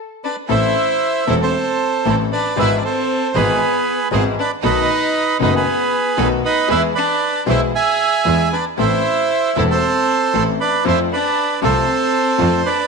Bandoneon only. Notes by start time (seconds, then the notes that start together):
0.24 B4 D5
0.51 C5 E5
1.30 C5 E5
1.42 A4 C5
2.32 B4 D5
2.59 B4 E5
2.77 D5
2.85 A4 C5
3.35 G#4 B4
4.12 G#4 C5
4.40 B4 D5
4.65 B4 D#5
5.43 B4 D#5
5.56 G#4 B4
6.45 B4 D#5
6.70 B4 E5
6.95 B4 D5
7.49 C5 E5
7.75 E5 G#5
8.53 B4 D5
8.80 C5 E5
9.58 C5 E5
9.70 A4 C5
10.61 B4 D5
10.88 C5 E5
11.13 B4 D5
11.64 A4 C5
12.66 B4 D5